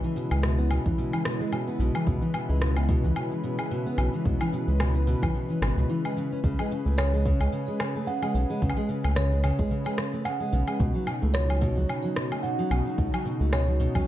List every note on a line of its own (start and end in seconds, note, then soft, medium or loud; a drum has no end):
0.00 10.76 C#3 medium
0.00 0.15 E3 medium
0.00 6.39 G#3 medium
0.00 6.39 E4 medium
0.00 10.76 B4 medium
0.05 shaker soft
0.16 0.31 B2 medium
0.16 shaker medium
0.31 0.79 C#2 loud
0.31 0.42 G#3 medium
0.31 low woodblock medium
0.31 shaker soft
0.43 0.57 B2 medium
0.43 cross-stick medium
0.43 shaker soft
0.59 0.69 B3 medium
0.59 shaker soft
0.71 0.85 B2 medium
0.71 low woodblock medium
0.71 shaker medium
0.86 0.95 C#2 loud
0.86 0.97 E3 medium
0.86 kick loud
0.86 shaker soft
0.98 1.12 B2 medium
0.98 shaker soft
1.13 1.24 E3 medium
1.13 low woodblock medium
1.13 shaker soft
1.25 1.40 B2 medium
1.25 cross-stick medium
1.25 shaker medium
1.40 1.51 G#3 medium
1.40 shaker soft
1.52 1.66 B2 medium
1.52 low woodblock medium
1.52 shaker soft
1.67 1.79 B3 medium
1.67 shaker soft
1.79 1.91 B1 medium
1.79 1.94 B2 loud
1.79 shaker medium
1.95 2.06 E3 medium
1.95 low woodblock medium
1.95 shaker soft
2.07 2.18 C#2 medium
2.07 2.21 B2 medium
2.07 kick loud
2.07 shaker soft
2.22 2.33 E3 medium
2.22 shaker soft
2.34 2.49 B2 medium
2.34 low woodblock medium
2.34 shaker medium
2.49 2.97 C#2 medium
2.49 2.60 G#3 medium
2.49 shaker soft
2.61 2.75 B2 loud
2.61 cross-stick medium
2.61 shaker soft
2.77 2.88 B3 medium
2.77 low woodblock medium
2.77 shaker soft
2.89 3.03 B2 loud
2.89 kick loud
2.89 shaker medium
3.04 3.13 C#2 loud
3.04 3.15 E3 medium
3.04 shaker soft
3.16 3.30 B2 medium
3.16 low woodblock medium
3.16 shaker soft
3.31 3.42 E3 medium
3.31 shaker soft
3.44 3.58 B2 medium
3.44 shaker medium
3.59 3.70 G#3 medium
3.59 low woodblock medium
3.59 shaker soft
3.71 3.85 B2 loud
3.71 shaker soft
3.86 3.97 B3 medium
3.86 shaker soft
3.98 4.09 B1 medium
3.98 4.12 B2 medium
3.98 low woodblock medium
3.98 shaker medium
4.14 4.24 E3 medium
4.14 shaker soft
4.25 4.36 C#2 medium
4.25 4.39 B2 medium
4.25 kick loud
4.25 shaker soft
4.41 4.52 E3 medium
4.41 low woodblock medium
4.41 shaker soft
4.53 4.67 B2 medium
4.53 shaker medium
4.68 5.16 C#2 loud
4.68 4.79 G#3 medium
4.68 shaker soft
4.72 shaker soft
4.75 shaker soft
4.78 4.94 B2 medium
4.78 cross-stick medium
4.78 low woodblock medium
4.78 shaker soft
4.81 shaker soft
4.85 shaker soft
4.88 shaker soft
4.92 5.06 B3 medium
4.92 shaker soft
4.96 shaker soft
5.07 5.21 B2 loud
5.07 shaker medium
5.22 5.31 C#2 loud
5.22 5.33 E3 medium
5.22 kick loud
5.22 low woodblock medium
5.22 shaker soft
5.34 5.48 B2 medium
5.34 shaker soft
5.50 5.61 E3 medium
5.50 shaker soft
5.54 shaker soft
5.57 shaker soft
5.60 5.73 G#1 loud
5.60 5.76 B2 medium
5.60 cross-stick medium
5.60 low woodblock medium
5.60 shaker soft
5.63 shaker medium
5.67 shaker soft
5.71 shaker soft
5.75 5.86 C#2 medium
5.75 5.88 B2 medium
5.75 shaker soft
5.78 shaker soft
5.90 6.03 E3 medium
5.90 shaker soft
6.05 6.15 G#3 medium
6.05 low woodblock medium
6.05 shaker soft
6.17 6.30 C#3 medium
6.17 shaker medium
6.32 6.39 C#4 medium
6.32 shaker soft
6.44 6.55 C#2 medium
6.44 6.57 C#3 medium
6.44 10.76 G#4 medium
6.44 kick loud
6.44 shaker soft
6.59 6.70 G#3 medium
6.59 low woodblock medium
6.59 shaker soft
6.71 6.86 C#3 medium
6.71 shaker medium
6.86 7.34 C#2 loud
6.86 6.97 A3 medium
6.86 shaker soft
6.98 7.12 C#3 loud
6.98 7.24 C#5 medium
6.98 cross-stick medium
6.98 low woodblock medium
6.98 shaker soft
7.13 7.24 G#3 medium
7.13 shaker soft
7.26 7.39 C#3 loud
7.26 kick loud
7.26 shaker medium
7.34 shaker soft
7.40 7.49 C#2 loud
7.40 7.52 G#3 medium
7.40 low woodblock medium
7.52 7.66 C#3 medium
7.52 shaker soft
7.68 7.79 G#3 medium
7.68 shaker soft
7.80 7.94 C#3 medium
7.80 cross-stick medium
7.80 low woodblock medium
7.80 shaker medium
7.96 8.06 A3 medium
7.96 shaker soft
7.99 shaker soft
8.04 8.21 C#3 loud
8.04 8.33 F#5 medium
8.04 shaker soft
8.08 shaker soft
8.13 shaker soft
8.17 shaker soft
8.22 8.33 G#3 medium
8.22 low woodblock medium
8.22 shaker soft
8.34 8.45 B1 medium
8.34 8.48 C#3 medium
8.34 shaker medium
8.50 8.61 G#3 medium
8.50 shaker soft
8.62 8.73 C#2 medium
8.62 8.75 C#3 medium
8.62 kick loud
8.62 shaker soft
8.70 low woodblock medium
8.77 8.88 G#3 medium
8.77 shaker soft
8.89 9.03 C#3 medium
8.89 shaker medium
9.04 9.52 C#2 loud
9.04 9.15 A3 medium
9.04 low woodblock medium
9.16 9.30 C#3 medium
9.16 9.42 C#5 medium
9.16 cross-stick medium
9.16 shaker soft
9.32 9.42 G#3 medium
9.32 shaker soft
9.44 9.57 C#3 loud
9.44 low woodblock medium
9.44 shaker medium
9.59 9.68 C#2 loud
9.59 9.70 G#3 medium
9.59 kick medium
9.59 shaker soft
9.71 9.84 C#3 medium
9.71 shaker soft
9.86 9.97 G#3 medium
9.86 low woodblock medium
9.86 shaker soft
9.98 10.13 C#3 medium
9.98 cross-stick medium
9.98 shaker medium
10.13 10.24 A3 medium
10.13 shaker soft
10.25 10.39 C#3 medium
10.25 10.51 F#5 medium
10.25 low woodblock medium
10.25 shaker soft
10.40 10.51 G#3 medium
10.40 shaker soft
10.52 10.64 B1 medium
10.52 10.66 C#3 medium
10.52 shaker medium
10.68 10.79 G#3 medium
10.68 low woodblock medium
10.68 shaker soft
10.79 10.91 C#2 loud
10.79 10.93 B2 medium
10.79 14.07 C#3 medium
10.79 14.07 D#4 medium
10.79 14.07 F#4 medium
10.79 kick loud
10.79 shaker soft
10.95 11.06 F#3 medium
10.95 shaker soft
11.07 11.22 B2 medium
11.07 low woodblock medium
11.07 shaker medium
11.22 11.70 C#2 loud
11.22 11.33 A3 medium
11.22 shaker soft
11.34 11.48 B2 loud
11.34 11.60 C#5 loud
11.34 cross-stick medium
11.34 shaker soft
11.49 11.60 F#3 medium
11.49 low woodblock medium
11.49 shaker soft
11.61 11.75 B2 loud
11.61 kick loud
11.61 shaker medium
11.77 11.86 C#2 loud
11.77 11.88 F#3 medium
11.77 shaker soft
11.89 12.03 B2 medium
11.89 low woodblock medium
11.89 shaker soft
12.04 12.15 F#3 medium
12.04 shaker soft
12.16 12.31 B2 medium
12.16 cross-stick medium
12.16 shaker medium
12.32 12.42 A3 medium
12.32 low woodblock medium
12.32 shaker soft
12.43 12.57 B2 loud
12.43 12.69 F#5 medium
12.43 shaker soft
12.59 12.70 F#3 medium
12.59 shaker soft
12.71 12.82 B1 medium
12.71 12.85 B2 loud
12.71 low woodblock medium
12.71 shaker medium
12.86 12.97 F#3 medium
12.86 shaker soft
12.98 13.09 C#2 medium
12.98 13.12 B2 medium
12.98 kick loud
12.98 shaker soft
13.13 13.24 F#3 medium
13.13 low woodblock medium
13.13 shaker soft
13.25 13.40 B2 medium
13.25 shaker medium
13.40 13.88 C#2 loud
13.40 13.51 A3 medium
13.40 shaker soft
13.53 13.66 B2 loud
13.53 13.79 C#5 medium
13.53 cross-stick medium
13.53 low woodblock medium
13.53 shaker soft
13.68 13.79 F#3 medium
13.68 shaker soft
13.80 13.94 B2 loud
13.80 shaker medium
13.95 14.04 C#2 medium
13.95 14.06 F#3 medium
13.95 kick loud
13.95 low woodblock medium
13.95 shaker soft